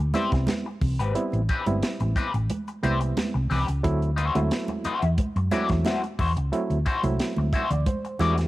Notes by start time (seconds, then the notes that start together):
Already playing: D2
0.14 G3 B3 C4 E4 G4 C5, snare, closed hi-hat, muted conga, high conga
0.32 C2, muted clean electric guitar stroke, kick, snare, closed hi-hat
0.47 muted clean electric guitar stroke, snare, closed hi-hat, muted conga, high conga
0.66 muted clean electric guitar stroke
0.81 C2, kick, open hi-hat, muted conga, low conga
0.99 G#1 C4 G4 B4, closed hi-hat
1.15 G3 B3 C4 E4, closed hi-hat
1.33 A1, closed hi-hat
1.49 C4 G4 B4, kick, closed hi-hat
1.66 G1 G3 B3 C4 E4, closed hi-hat, high conga
1.83 muted fingered electric bass stroke, snare, closed hi-hat
2.00 A1, muted clean electric guitar stroke, closed hi-hat, high conga
2.16 C4 G4 B4, kick, closed hi-hat
2.34 A1, muted clean electric guitar stroke, closed hi-hat, low conga
2.50 muted clean electric guitar stroke, closed hi-hat, high conga
2.68 muted clean electric guitar stroke, closed hi-hat
2.83 C2 G3 B3 C4 E4 G4 C5, closed hi-hat, muted conga, high conga
3.00 muted clean electric guitar stroke, closed hi-hat
3.17 snare, closed hi-hat, muted conga, high conga
3.34 C2, muted clean electric guitar stroke
3.50 C2 C4 G4 B4, open hi-hat, low conga
3.68 C#2, muted clean electric guitar stroke, closed hi-hat
3.83 D2 F#3 A3 C4 E4, kick, closed hi-hat, muted conga
4.02 closed hi-hat
4.16 E4 F#4 C5, closed hi-hat, muted conga
4.35 D2 F#3 A3 C4 E4, closed hi-hat, high conga
4.51 snare, closed hi-hat, muted conga
4.68 muted clean electric guitar stroke, closed hi-hat, high conga
4.84 E4 F#4 C5, muted fingered electric bass stroke, closed hi-hat, muted conga
5.02 E2, muted clean electric guitar stroke, closed hi-hat, low conga
5.18 muted clean electric guitar stroke, kick, closed hi-hat, high conga
5.36 F#2, muted clean electric guitar stroke, closed hi-hat
5.51 F#3 A3 C4 E4 F#4 D5, snare, closed hi-hat, muted conga, high conga
5.69 E2, muted clean electric guitar stroke, kick, snare, closed hi-hat
5.85 E4 F#4 C5, snare, closed hi-hat, muted conga, high conga
6.03 muted clean electric guitar stroke, closed hi-hat
6.19 E2 E4 F#4 C5, kick, open hi-hat, muted conga, low conga
6.37 C#2, muted clean electric guitar stroke, closed hi-hat
6.52 F#3 A3 C4 E4, closed hi-hat
6.70 D2, closed hi-hat
6.86 E4 F#4 C5, kick, closed hi-hat
7.03 C2 F#3 A3 C4 E4, closed hi-hat, high conga
7.19 muted fingered electric bass stroke, snare, closed hi-hat
7.36 D2, muted clean electric guitar stroke, high conga
7.53 E4 F#4 C5 E5, kick, closed hi-hat
7.70 D2 D5, muted clean electric guitar stroke, closed hi-hat, low conga
7.86 C5, muted clean electric guitar stroke, kick, closed hi-hat, high conga
8.05 muted clean electric guitar stroke, closed hi-hat
8.19 E2 A3 C4 E4 F#4 G4 D5, snare, closed hi-hat, muted conga, high conga
8.38 muted clean electric guitar stroke, snare, closed hi-hat